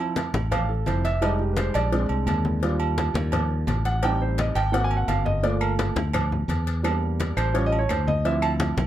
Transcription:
Already playing: F3 C4
0.00 E4
0.16 cowbell, high conga, low agogo
0.34 A1, high conga, low agogo
0.51 F5, cowbell, high conga, low conga, low agogo
0.69 A4, high conga
0.86 F1 F3 C4 E4 C5, cowbell, high conga, low agogo
1.04 E5, cowbell, high conga
1.21 G3 G#3 D#4 D#5, cowbell, high conga, low agogo
1.39 G4, high conga
1.53 B4, high conga
1.57 C5, cowbell, low agogo
1.74 A#1 D5, cowbell, high conga, low agogo
1.92 G#3 C4 D4, cowbell, high conga
2.09 C2, high conga, low agogo
2.27 D#2, cowbell, high conga, low agogo
2.45 high conga
2.62 G3 D4 F4, cowbell, high conga
2.80 high conga, low agogo
2.98 cowbell, high conga, low agogo
3.14 D#2, high conga, low agogo
3.32 cowbell, high conga, low conga, low agogo
3.50 high conga
3.67 A1, cowbell, high conga, low timbale, low agogo
3.85 F#5, cowbell, high conga
4.03 G3 C4 D#4 G5, cowbell, low agogo
4.21 C5, high conga
4.38 D#5, cowbell, high conga, low agogo
4.55 G#1 G5, cowbell, high conga, low agogo
4.72 A#3 C4 F#4 F#5, cowbell, high conga
4.84 G#5
4.91 high conga, low agogo
4.97 F#5
5.08 G1 F5, cowbell, high conga, low agogo
5.26 D#5, high conga
5.43 A3 A#3 F4 D5, cowbell, high conga
5.61 A#4, high conga, low agogo, claves
5.79 cowbell, high conga, low agogo
5.96 D2, high conga, low agogo
6.13 cowbell, high conga, low conga, low agogo, claves
6.32 high conga, low conga
6.48 E2, cowbell, high conga, low agogo
6.67 cowbell, high conga
6.83 G3 A#3 D4, cowbell, high conga, low agogo, claves
7.03 high conga
7.20 cowbell, high conga, low agogo
7.37 A1 C5, cowbell, high conga, low agogo, claves
7.54 G3 C#4 F4 C#5, cowbell, high conga
7.66 D#5
7.72 high conga, low agogo
7.79 C#5
7.89 D2 C5, cowbell, high conga, low agogo, claves
8.07 D#5, high conga
8.25 F3 C4 E4 E5, cowbell
8.42 A5, high conga, low agogo, claves
8.60 cowbell, high conga, low agogo
8.77 B1, high conga, low agogo

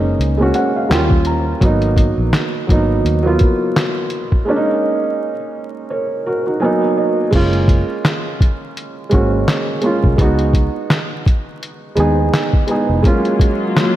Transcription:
Already playing: F#1 G#3 A#3 B3 C#4 D#4
0.19 C#2, closed hi-hat
0.37 G#3 A#3 C#4
0.42 F#4
0.54 F#5, closed hi-hat
0.76 F5
0.89 D#2 G3 A#3 C#4 G5, snare, clap, closed hi-hat
0.94 F4
1.11 kick
1.25 A#5, closed hi-hat
1.60 G#1 F#3 A#3 B3, kick, closed hi-hat
1.65 D#4
1.82 closed hi-hat
1.97 kick, closed hi-hat
2.18 A#1
2.33 snare, clap, closed hi-hat
2.67 G#1 F#3 A#3 B3, kick, closed hi-hat
2.71 D#4
3.05 D#2, closed hi-hat
3.23 F#3 A#3 B3
3.27 F4
3.39 kick, closed hi-hat
3.76 snare, clap, closed hi-hat
4.10 closed hi-hat
4.32 kick
4.45 G#3 A#3 C#4
4.50 D4
4.56 D#4
5.90 A#4 C#5
6.26 F#4 A#4
6.47 D#4 F#4
6.60 F#3 A#3 B3 G#5
6.65 D#4
6.98 D#5
7.31 F#1 G#3 A#3 C#4, kick, closed hi-hat, crash
7.36 F4
7.53 closed hi-hat
7.68 kick, closed hi-hat
8.05 snare, clap, closed hi-hat
8.41 kick, closed hi-hat
8.77 closed hi-hat
9.09 G#1 G#3 A#3 C#4, kick, closed hi-hat
9.14 F#4
9.48 snare, clap, closed hi-hat
9.81 G#3 A#3 C#4, closed hi-hat
9.85 F4
10.04 C2, kick
10.16 C#2 G#3 B3 D#4, kick, closed hi-hat
10.21 F#4
10.39 closed hi-hat
10.54 kick, closed hi-hat
10.90 snare, clap, closed hi-hat
11.26 kick, closed hi-hat
11.63 closed hi-hat
11.95 D#2 G#3 B3 D#4, closed hi-hat
12.00 G#4
12.34 snare, clap, closed hi-hat
12.53 kick
12.67 G#3 B3 D#4, closed hi-hat
12.71 G#4
12.89 F1
13.02 F#3 G#3 A#3 C#4 F4, kick, closed hi-hat
13.07 F4
13.25 closed hi-hat
13.40 kick, closed hi-hat
13.77 snare, clap, closed hi-hat

